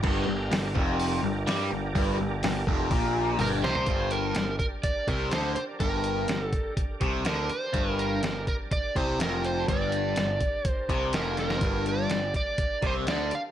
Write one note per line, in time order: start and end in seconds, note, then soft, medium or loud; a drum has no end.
0.03 0.26 G1 medium
0.03 0.26 G2 loud
0.03 3.84 G4 medium
0.03 3.84 A#4 medium
0.03 3.84 D5 medium
0.03 kick loud
0.03 crash loud
0.27 0.50 G1 medium
0.27 0.46 G2 medium
0.51 0.74 G1 medium
0.51 0.70 G2 medium
0.51 snare loud
0.51 open hi-hat medium
0.75 1.20 F1 loud
0.75 1.22 F2 loud
0.75 kick loud
1.00 open hi-hat medium
1.23 1.46 G1 medium
1.23 1.43 G2 medium
1.47 1.70 G2 medium
1.47 1.71 G3 loud
1.47 snare loud
1.47 open hi-hat medium
1.71 1.94 G1 medium
1.71 1.90 G2 medium
1.95 2.18 G1 medium
1.95 2.18 G2 loud
1.95 kick loud
1.95 open hi-hat medium
2.19 2.42 G1 medium
2.19 2.39 G2 medium
2.43 2.66 G1 medium
2.43 2.63 G2 medium
2.43 snare loud
2.43 open hi-hat medium
2.67 2.90 F1 loud
2.67 2.91 F2 loud
2.67 kick loud
2.91 3.36 A#1 medium
2.91 3.39 A#2 loud
2.91 kick loud
2.91 open hi-hat medium
3.39 3.61 G1 medium
3.39 3.62 G2 medium
3.39 3.47 A#4 medium
3.39 open hi-hat medium
3.39 high tom medium
3.63 3.86 C2 medium
3.63 3.87 C3 loud
3.63 4.13 C5 medium
3.63 snare medium
3.75 floor tom loud
3.86 4.32 G1 medium
3.86 4.35 G2 loud
3.86 7.71 D4 medium
3.86 7.70 G4 medium
3.86 7.70 A#4 medium
3.86 7.71 D5 medium
3.86 kick medium
3.86 closed hi-hat medium
4.11 4.57 A#4 medium
4.11 closed hi-hat medium
4.35 4.58 G1 medium
4.35 4.55 G2 medium
4.35 snare loud
4.35 closed hi-hat medium
4.59 4.66 A#4 medium
4.59 kick medium
4.59 closed hi-hat medium
4.83 5.09 D5 medium
4.83 kick medium
4.83 closed hi-hat medium
5.08 5.30 C2 medium
5.08 5.32 C3 medium
5.08 5.31 A#4 medium
5.08 kick medium
5.08 closed hi-hat medium
5.31 5.54 D2 medium
5.31 5.56 D3 loud
5.31 5.54 C5 medium
5.31 snare medium
5.31 closed hi-hat medium
5.55 5.62 C5 medium
5.55 muted overdriven electric guitar stroke medium
5.55 muted picked electric bass stroke soft
5.55 closed hi-hat medium
5.80 6.25 G1 medium
5.80 6.27 G2 medium
5.80 6.43 A#4 medium
5.80 kick medium
5.80 closed hi-hat medium
6.04 closed hi-hat medium
6.28 6.51 G1 medium
6.28 6.48 G2 medium
6.28 snare medium
6.28 closed hi-hat medium
6.43 6.73 A4 medium
6.53 kick medium
6.53 closed hi-hat medium
6.77 kick medium
6.77 closed hi-hat medium
7.01 7.24 C2 medium
7.01 7.25 C3 medium
7.01 kick medium
7.01 closed hi-hat medium
7.25 7.48 D2 medium
7.25 7.49 D3 loud
7.25 7.51 A#4 medium
7.25 snare loud
7.25 closed hi-hat medium
7.50 8.00 C5 medium
7.50 muted overdriven electric guitar stroke medium
7.50 muted picked electric bass stroke soft
7.50 closed hi-hat medium
7.73 8.19 G1 medium
7.73 8.21 G2 loud
7.73 11.59 D4 medium
7.73 11.59 G4 medium
7.73 11.59 A#4 medium
7.73 11.59 D5 medium
7.73 kick loud
7.73 closed hi-hat medium
7.99 8.47 A#4 medium
7.99 closed hi-hat medium
8.23 8.45 G1 medium
8.23 8.42 G2 medium
8.23 snare loud
8.23 closed hi-hat medium
8.47 8.55 A#4 medium
8.47 kick medium
8.47 closed hi-hat soft
8.71 8.94 D5 medium
8.71 kick medium
8.71 closed hi-hat medium
8.96 9.18 C2 medium
8.96 9.19 C3 medium
8.96 9.21 C5 medium
8.96 kick medium
8.96 closed hi-hat soft
9.19 9.65 F1 medium
9.19 9.67 F2 loud
9.19 9.46 A#4 medium
9.19 snare medium
9.19 closed hi-hat medium
9.44 9.69 C5 medium
9.44 closed hi-hat soft
9.68 10.13 G1 medium
9.68 10.16 G2 loud
9.68 10.69 D5 loud
9.68 kick loud
9.68 closed hi-hat medium
9.92 closed hi-hat medium
10.16 10.39 G1 medium
10.16 10.36 G2 medium
10.16 snare medium
10.16 closed hi-hat medium
10.41 kick medium
10.41 closed hi-hat medium
10.65 kick medium
10.65 closed hi-hat medium
10.69 11.18 C5 loud
10.89 11.12 C2 medium
10.89 11.13 C3 medium
10.89 kick medium
10.89 closed hi-hat medium
11.13 11.59 F1 medium
11.13 11.61 F2 medium
11.13 11.37 A#4 medium
11.13 snare loud
11.13 closed hi-hat medium
11.37 11.84 A#4 medium
11.37 snare soft
11.37 closed hi-hat medium
11.50 snare medium
11.61 12.07 G1 medium
11.61 12.09 G2 loud
11.61 13.51 D4 medium
11.61 13.51 G4 medium
11.61 13.51 A#4 medium
11.61 kick medium
11.61 closed hi-hat medium
11.86 12.35 D5 medium
11.86 closed hi-hat medium
12.10 12.33 G1 medium
12.10 12.30 G2 medium
12.10 snare loud
12.10 closed hi-hat medium
12.34 12.85 D5 loud
12.34 kick medium
12.34 closed hi-hat medium
12.58 kick medium
12.58 closed hi-hat medium
12.82 13.05 C2 medium
12.82 13.06 C3 medium
12.82 kick medium
12.82 closed hi-hat soft
12.86 12.93 C5 medium
13.07 13.30 D2 medium
13.07 13.31 D3 loud
13.07 13.33 D5 medium
13.07 snare loud
13.07 closed hi-hat medium
13.31 13.41 F5 medium
13.31 muted picked electric bass stroke soft
13.31 muted overdriven electric guitar stroke medium
13.31 closed hi-hat medium